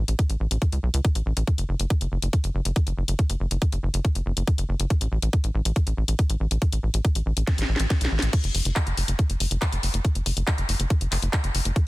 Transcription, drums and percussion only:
0.08 closed hi-hat
0.19 kick, closed hi-hat
0.30 closed hi-hat
0.51 closed hi-hat
0.62 kick, closed hi-hat
0.72 closed hi-hat
0.94 closed hi-hat
1.05 kick, closed hi-hat
1.15 closed hi-hat
1.37 closed hi-hat
1.47 kick, closed hi-hat
1.58 closed hi-hat
1.80 closed hi-hat
1.90 kick, closed hi-hat
2.01 closed hi-hat
2.22 closed hi-hat
2.33 kick, closed hi-hat
2.44 closed hi-hat
2.65 closed hi-hat
2.76 kick, closed hi-hat
2.87 closed hi-hat
3.08 closed hi-hat
3.19 kick, closed hi-hat
3.30 closed hi-hat
3.51 closed hi-hat
3.62 kick, closed hi-hat
3.72 closed hi-hat
3.94 closed hi-hat
4.05 kick, closed hi-hat
4.15 closed hi-hat
4.37 closed hi-hat
4.47 kick, closed hi-hat
4.58 closed hi-hat
4.80 closed hi-hat
4.90 kick, closed hi-hat
5.01 closed hi-hat
5.22 closed hi-hat
5.33 kick, closed hi-hat
5.44 closed hi-hat
5.65 closed hi-hat
5.76 kick, closed hi-hat
5.87 closed hi-hat
6.08 closed hi-hat
6.19 kick, closed hi-hat
6.30 closed hi-hat
6.51 closed hi-hat
6.62 kick, closed hi-hat
6.72 closed hi-hat
6.94 closed hi-hat
7.05 kick, closed hi-hat
7.15 closed hi-hat
7.37 closed hi-hat
7.47 kick, snare, closed hi-hat
7.58 snare, closed hi-hat
7.76 snare, closed hi-hat
7.90 kick, snare, closed hi-hat
8.01 snare, closed hi-hat
8.19 snare, closed hi-hat
8.33 kick, closed hi-hat, crash
8.44 closed hi-hat
8.55 open hi-hat
8.65 closed hi-hat
8.76 kick, clap, closed hi-hat
8.87 closed hi-hat
8.97 open hi-hat
9.08 closed hi-hat
9.19 kick, closed hi-hat
9.30 closed hi-hat
9.40 open hi-hat
9.51 closed hi-hat
9.62 kick, clap, closed hi-hat
9.72 closed hi-hat
9.83 open hi-hat
9.94 closed hi-hat
10.05 kick, closed hi-hat
10.15 closed hi-hat
10.26 open hi-hat
10.37 closed hi-hat
10.47 kick, clap, closed hi-hat
10.58 closed hi-hat
10.69 open hi-hat
10.80 closed hi-hat
10.90 kick, closed hi-hat
11.01 closed hi-hat
11.12 clap, open hi-hat
11.22 closed hi-hat
11.33 kick, clap, closed hi-hat
11.44 closed hi-hat
11.55 open hi-hat
11.65 closed hi-hat
11.76 kick, closed hi-hat

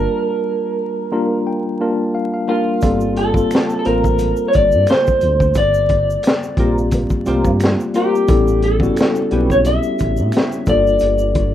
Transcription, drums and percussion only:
2.81 kick, closed hi-hat, shaker
3.00 shaker
3.16 closed hi-hat
3.34 kick, shaker
3.51 finger snap, closed hi-hat, shaker
3.55 snare
3.70 shaker
3.85 closed hi-hat
4.04 kick, shaker
4.19 closed hi-hat, shaker
4.36 shaker
4.53 kick, closed hi-hat, shaker
4.72 shaker
4.87 finger snap, snare, closed hi-hat, shaker
5.07 kick, shaker
5.21 closed hi-hat, shaker
5.40 kick, shaker
5.54 kick, closed hi-hat, shaker
5.74 shaker
5.89 kick, closed hi-hat
6.10 shaker
6.23 finger snap, closed hi-hat, shaker
6.27 snare
6.43 shaker
6.57 kick, closed hi-hat
6.78 shaker
6.91 kick, closed hi-hat, shaker
7.10 kick, shaker
7.26 closed hi-hat, shaker
7.45 kick, shaker
7.60 finger snap, snare, closed hi-hat, shaker
7.80 shaker
7.94 closed hi-hat, shaker
8.15 shaker
8.28 kick, closed hi-hat, shaker
8.48 shaker
8.62 closed hi-hat
8.80 kick, shaker
8.96 finger snap, closed hi-hat, shaker
9.01 snare
9.16 shaker
9.31 closed hi-hat
9.50 kick, shaker
9.65 closed hi-hat, shaker
9.83 shaker
9.99 kick, closed hi-hat, shaker
10.17 shaker
10.32 finger snap, closed hi-hat, shaker
10.37 snare
10.52 shaker
10.66 kick, closed hi-hat, shaker
10.87 shaker
10.99 closed hi-hat, shaker
11.18 shaker
11.35 kick, closed hi-hat

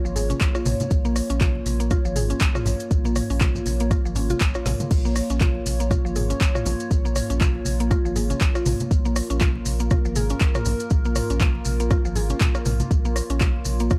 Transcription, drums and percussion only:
0.06 maracas
0.16 open hi-hat, low conga, maracas
0.30 closed hi-hat, muted conga, high conga, maracas
0.41 kick, clap, closed hi-hat, maracas
0.55 cross-stick, maracas
0.65 mid tom, open hi-hat, muted conga, high conga, maracas
0.80 closed hi-hat, high conga, maracas
0.91 kick, closed hi-hat, maracas
1.05 muted conga, maracas
1.16 cross-stick, open hi-hat, maracas
1.30 closed hi-hat, maracas
1.41 kick, clap, closed hi-hat, high conga, maracas
1.55 muted conga
1.66 open hi-hat, high conga, maracas
1.80 closed hi-hat, maracas
1.91 kick, cross-stick, closed hi-hat, muted conga, high conga, maracas
2.05 maracas
2.15 mid tom, open hi-hat, high conga, maracas
2.30 closed hi-hat, muted conga, maracas
2.40 kick, clap, closed hi-hat, maracas
2.55 cross-stick, mid tom, maracas
2.65 open hi-hat, muted conga, low conga, maracas
2.80 closed hi-hat, maracas
2.91 kick, closed hi-hat, maracas
3.05 muted conga, maracas
3.16 cross-stick, mid tom, open hi-hat, maracas
3.30 open hi-hat, maracas
3.41 kick, clap, closed hi-hat, high conga, maracas
3.55 muted conga, low conga, maracas
3.66 open hi-hat, high conga, maracas
3.80 closed hi-hat, maracas
3.91 kick, cross-stick, closed hi-hat, muted conga, low conga, maracas
4.06 maracas
4.15 open hi-hat, low conga, maracas
4.29 closed hi-hat, muted conga, high conga, maracas
4.40 kick, clap, closed hi-hat, maracas
4.54 cross-stick, maracas
4.66 snare, mid tom, open hi-hat, muted conga, high conga, maracas
4.80 closed hi-hat, mid tom, high conga, maracas
4.91 kick, closed hi-hat, crash, maracas
5.05 muted conga, maracas
5.16 cross-stick, open hi-hat, maracas
5.30 closed hi-hat, maracas
5.41 kick, clap, closed hi-hat, high conga, maracas
5.55 muted conga
5.66 open hi-hat, high conga, maracas
5.80 closed hi-hat, maracas
5.90 kick, cross-stick, closed hi-hat, muted conga, high conga, maracas
6.06 maracas
6.16 mid tom, open hi-hat, high conga, maracas
6.30 closed hi-hat, muted conga, maracas
6.41 kick, clap, closed hi-hat, maracas
6.55 cross-stick, mid tom, maracas
6.65 open hi-hat, muted conga, low conga, maracas
6.80 closed hi-hat, maracas
6.91 kick, closed hi-hat, maracas
7.05 muted conga, maracas
7.16 cross-stick, mid tom, open hi-hat, maracas
7.30 closed hi-hat, maracas
7.41 kick, clap, closed hi-hat, high conga, maracas
7.55 muted conga
7.65 open hi-hat, high conga, maracas
7.80 closed hi-hat, maracas
7.91 kick, cross-stick, closed hi-hat, muted conga, low conga, maracas
8.05 maracas
8.16 open hi-hat, low conga, maracas
8.30 closed hi-hat, muted conga, high conga, maracas
8.41 kick, clap, closed hi-hat, maracas
8.55 cross-stick, maracas
8.66 mid tom, open hi-hat, muted conga, high conga, maracas
8.80 closed hi-hat, high conga, maracas
8.91 kick, closed hi-hat, maracas
9.05 muted conga, maracas
9.16 cross-stick, open hi-hat, maracas
9.30 closed hi-hat, maracas
9.41 kick, clap, closed hi-hat, high conga, maracas
9.55 muted conga
9.66 open hi-hat, high conga, maracas
9.79 closed hi-hat, maracas
9.90 kick, cross-stick, closed hi-hat, muted conga, high conga, maracas
10.05 maracas
10.16 mid tom, open hi-hat, high conga, maracas
10.30 closed hi-hat, muted conga, maracas
10.40 kick, clap, closed hi-hat, maracas
10.55 cross-stick, mid tom, maracas
10.65 open hi-hat, muted conga, low conga, maracas
10.80 closed hi-hat, maracas
10.90 kick, closed hi-hat, maracas
11.05 muted conga, maracas
11.16 cross-stick, mid tom, open hi-hat, maracas
11.30 closed hi-hat, maracas
11.40 kick, clap, closed hi-hat, high conga, maracas
11.55 muted conga
11.65 open hi-hat, high conga, maracas
11.80 closed hi-hat, maracas
11.90 kick, cross-stick, closed hi-hat, muted conga, low conga, maracas
12.05 maracas
12.15 open hi-hat, low conga, maracas
12.29 closed hi-hat, muted conga, high conga, maracas
12.41 kick, clap, closed hi-hat, maracas
12.55 cross-stick, maracas
12.65 mid tom, open hi-hat, muted conga, high conga, maracas
12.80 closed hi-hat, high conga, maracas
12.91 kick, closed hi-hat, maracas
13.05 muted conga, maracas
13.16 cross-stick, open hi-hat, maracas
13.30 closed hi-hat, maracas
13.40 kick, clap, closed hi-hat, high conga, maracas
13.56 muted conga
13.65 open hi-hat, high conga, maracas
13.80 closed hi-hat, maracas
13.90 kick, cross-stick, closed hi-hat, muted conga, high conga, maracas

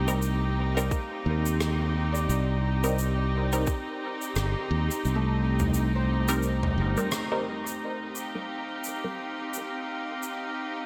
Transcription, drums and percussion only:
0.08 shaker
0.22 shaker
0.77 shaker
0.91 kick, shaker
1.46 shaker
1.61 cross-stick, shaker
2.15 shaker
2.30 shaker
2.84 shaker
2.98 shaker
3.52 shaker
3.67 kick, shaker
4.22 shaker
4.36 cross-stick, shaker
4.91 shaker
5.05 shaker
5.59 mid tom, shaker
5.74 shaker
6.28 shaker
6.43 shaker
6.63 mid tom
6.97 shaker
7.11 cross-stick, shaker
7.67 shaker
8.15 shaker
8.84 shaker
9.54 shaker
10.23 shaker

